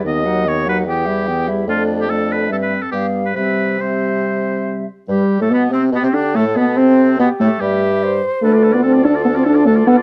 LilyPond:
<<
  \new Staff \with { instrumentName = "Flute" } { \time 4/4 \key c \major \tempo 4 = 145 dis''8 fis''8 dis''8 fis''8 g''8 e''8 g''8 e''8 | d''4 d''4 e''4 f''4 | e''4 e''2~ e''8 r8 | r2 g'4 a'4~ |
a'4 g'4 e''4 c''4 | b'4 a'2. | }
  \new Staff \with { instrumentName = "Oboe" } { \time 4/4 \key c \major dis''4 des''8 b'8 g'4. r8 | f'8. g'16 a'8 b'8 a'16 b'8 a'16 g'8. b'16 | b'4 c''2~ c''8 r8 | g'8. a'16 b8 c'8 b16 c'16 d'8 a'8 b8 |
c'4 b8 a'8 g'4. r8 | a'16 d''16 a'16 d''16 a'16 d''16 a'16 d''16 a'16 d''16 a'16 d''16 a'16 d''16 a'16 d''16 | }
  \new Staff \with { instrumentName = "Clarinet" } { \time 4/4 \key c \major b8 dis'8 b8 dis'8 b8 e'8 b8 e'8 | d'4 d'4 c'4 b4 | c'4 c'2~ c'8 r8 | g8. a16 b8 c'8 b16 c'16 d'8 a8 b8 |
c'4 b8 a8 g4. r8 | d'16 f'16 d'16 f'16 d'16 f'16 d'16 f'16 d'16 f'16 d'16 f'16 d'16 f'16 d'16 f'16 | }
  \new Staff \with { instrumentName = "French horn" } { \time 4/4 \key c \major dis8 fis8 dis8 fis8 e8 g8 e8 g8 | a4 a4 g4 g4 | g4 g2~ g8 r8 | g8. a16 b8 c'8 b16 c'16 d'8 a8 b8 |
c'4 b8 a8 g4. r8 | a8. b16 c'8 d'8 b16 c'16 d'8 a8 b8 | }
  \new Staff \with { instrumentName = "Bassoon" } { \clef bass \time 4/4 \key c \major dis,2 e,2 | f,2 g,4 g,4 | c2.~ c8 r8 | g,8. a,16 b,8 c8 b,16 c16 d8 a,8 b,8 |
c4 b,8 a,8 g,4. r8 | d,1 | }
>>